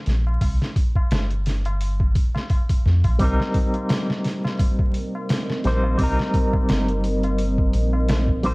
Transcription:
0.06 A#1, snare, open hi-hat
0.27 tabla na
0.41 C2, kick, open hi-hat, tabla na
0.61 snare, tabla na
0.76 kick, open hi-hat
0.96 kick, tabla na
1.11 G1, snare, open hi-hat, tabla na
1.31 closed hi-hat, tabla na
1.46 snare, open hi-hat
1.65 closed hi-hat, tabla na
1.81 open hi-hat, tabla na
2.00 kick, tabla na
2.15 kick, open hi-hat
2.35 snare, tabla na
2.50 kick, open hi-hat, tabla na
2.69 kick, open hi-hat, tabla na
2.86 F2, snare
3.04 A#1, kick, open hi-hat, tabla na
3.19 C2 G3 C4 D#4 A#4 D#5, kick, open hi-hat, tabla na
3.24 A#4
3.40 snare, tabla na
3.54 kick, open hi-hat
3.74 closed hi-hat, tabla na
3.89 snare, open hi-hat, tabla na
4.10 snare, tabla na
4.24 snare, open hi-hat
4.44 snare, tabla na
4.59 kick, open hi-hat, tabla na
4.79 kick, tabla na
4.94 open hi-hat
5.15 tabla na
5.29 snare, open hi-hat, tabla na
5.49 snare, tabla na
5.64 A#1 G3 C4 D#4 C5, snare, open hi-hat
5.84 tabla na
5.98 C2 G3 C4 D#4, kick, open hi-hat, tabla na
6.03 A#4
6.19 snare, tabla na
6.34 kick, open hi-hat
6.53 kick, tabla na
6.69 G1, snare, open hi-hat, tabla na
6.88 closed hi-hat, tabla na
7.04 open hi-hat
7.23 closed hi-hat, tabla na
7.38 open hi-hat, tabla na
7.58 kick, tabla na
7.73 A#1, open hi-hat
7.93 tabla na
8.09 snare, open hi-hat, tabla na
8.28 kick, tabla na
8.43 G3 C4 D#4 C5, open hi-hat

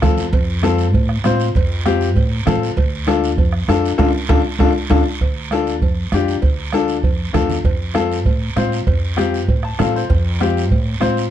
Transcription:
0.01 D2 C4 F4 A4, bombo low, bombo rim, cowbell, high conga, low conga, short guiro
0.17 E2, short guiro
0.33 F2, bombo low, cowbell, high conga, long guiro
0.62 C4 F4 A4, bombo rim, cowbell, high conga, short guiro
0.78 short guiro
0.93 A2, bombo low, cowbell, high conga, long guiro
1.09 bombo rim
1.24 A2 C4 F4 C5, bombo rim, cowbell, high conga, short guiro
1.40 short guiro
1.55 F2, bombo low, cowbell, high conga, long guiro
1.86 C4 F4 G4, bombo rim, cowbell, high conga, short guiro
2.01 short guiro
2.16 A2, bombo low, cowbell, high conga, long guiro
2.46 A2 C4 F4 A4, bombo rim, cowbell, high conga, low conga, short guiro
2.63 short guiro
2.77 D2, bombo low, cowbell, high conga, long guiro
3.07 D4 F4 A4, bombo rim, cowbell, high conga, short guiro
3.24 short guiro
3.38 F2, bombo low, cowbell, high conga, long guiro
3.53 bombo rim
3.68 F2 D4 F4 A4, bombo rim, cowbell, high conga, short guiro
3.85 short guiro
3.98 D2 D4 F4 A4, bombo low, high conga, high timbale, long guiro
4.29 D2 D4 F4 A4, bombo low, high conga, high timbale
4.59 D2 D4 F4 A4, bombo low, high conga, high timbale, long guiro
4.90 D2 D4 F4 A4, bombo low, high conga, high timbale, long guiro
5.21 D2, bombo low, cowbell, high conga, long guiro
5.51 D4 F4 A4, bombo rim, cowbell, high conga, short guiro
5.67 short guiro
5.81 F2, bombo low, cowbell, high conga, long guiro
6.12 F2 D4 F4 G4, bombo rim, cowbell, high conga, short guiro
6.28 short guiro
6.42 D2, bombo low, cowbell, high conga, long guiro
6.72 D4 F4 A4, bombo rim, cowbell, high conga, short guiro
6.88 short guiro
7.03 F2, bombo low, cowbell, high conga, long guiro
7.33 E2 D4 F4 A4, bombo low, bombo rim, cowbell, high conga, low conga, short guiro
7.50 low conga, short guiro
7.64 F2, bombo low, cowbell, high conga, long guiro
7.94 C4 F4 A4, bombo rim, cowbell, high conga, short guiro
8.12 short guiro
8.25 A2, bombo low, cowbell, high conga, long guiro
8.56 A2 C4 F4 C5, bombo rim, cowbell, high conga, short guiro
8.72 short guiro
8.87 F2, bombo low, cowbell, high conga, long guiro
9.17 C4 F4 G4, bombo rim, cowbell, high conga, short guiro
9.34 short guiro
9.48 A2, bombo low, cowbell, high conga, long guiro
9.63 A5, bombo rim
9.78 A2 C4 F4 A4 F5, bombo rim, cowbell, high conga, low conga, low timbale, short guiro
9.96 C5, short guiro
10.10 F2, bombo low, cowbell, high conga, long guiro
10.40 C4 F4 G4, bombo rim, cowbell, high conga, short guiro
10.57 short guiro
10.71 A2, bombo low, cowbell, high conga, long guiro
11.00 A2 C4 F4 C5, bombo rim, cowbell, high conga, short guiro
11.17 short guiro

